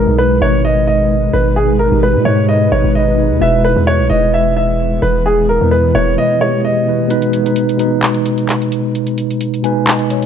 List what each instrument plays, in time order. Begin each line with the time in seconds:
Already playing: tine electric piano B2 G#3 D#4 B4, ambient pad G#3 D#4 B4, grand piano A#4
0.06 808-style bass B1, tine electric piano B2 G#3 D#4 A#4
0.18 grand piano B4
0.41 808-style bass G#1, tine electric piano B2 G#3 D#4 B4, grand piano C#5
0.65 grand piano D#5
0.87 grand piano D#5
1.33 808-style bass G#1, grand piano B4
1.56 grand piano G#4
1.79 grand piano A#4
1.90 808-style bass G#1, tine electric piano B2 G#3 D#4 G4
2.03 grand piano B4
2.15 808-style bass B2
2.25 808-style bass G#2, tine electric piano B2 G#3 D#4 B4, grand piano C#5
2.49 grand piano D#5
2.71 808-style bass G#1, tine electric piano B2 G#3 D#4 B4, grand piano C#5
2.84 808-style bass G#1
2.95 grand piano D#5
3.16 tine electric piano B2 G#3 D#4 B4
3.30 808-style bass D#2
3.40 808-style bass E1, tine electric piano B2 G#3 E4 B4, ambient pad E3 G#3 B3, grand piano E5
3.65 grand piano B4
3.75 808-style bass E2, tine electric piano B2 G#3 E4 B4
3.87 grand piano C#5
4.00 808-style bass B1
4.09 808-style bass E1, tine electric piano B2 G#3 E4 B4, grand piano D#5
4.34 grand piano E5
4.57 grand piano E5
5.02 808-style bass E1, grand piano B4
5.26 grand piano G#4
5.49 grand piano A#4
5.60 808-style bass E2, tine electric piano B2 G#3 E4 B4
5.71 grand piano B4
5.93 808-style bass E1, tine electric piano B2 G#3 E4 B4, grand piano C#5
6.18 grand piano D#5
6.40 tine electric piano B2 G#3 E4 G4, grand piano C#5
6.65 grand piano D#5
6.86 tine electric piano B2 G#3 E4 B4
7.08 tine electric piano B2 G#3 D#4 B4, closed hi-hat
7.22 closed hi-hat
7.33 closed hi-hat
7.44 tine electric piano B2 G#3 D#4 B4, closed hi-hat
7.56 closed hi-hat
7.69 closed hi-hat
7.78 tine electric piano B2 G#3 D#4 B4, closed hi-hat
8.03 clap, closed hi-hat
8.14 closed hi-hat
8.26 closed hi-hat
8.38 closed hi-hat
8.49 clap, closed hi-hat
8.62 closed hi-hat
8.72 closed hi-hat
8.95 closed hi-hat
9.07 closed hi-hat
9.18 closed hi-hat
9.31 closed hi-hat
9.41 closed hi-hat
9.54 closed hi-hat
9.63 tine electric piano B2 G#3 D#4 B4 G#5, closed hi-hat
9.87 tine electric piano D#5, clap, closed hi-hat
9.99 closed hi-hat
10.10 tine electric piano C#5, closed hi-hat
10.23 closed hi-hat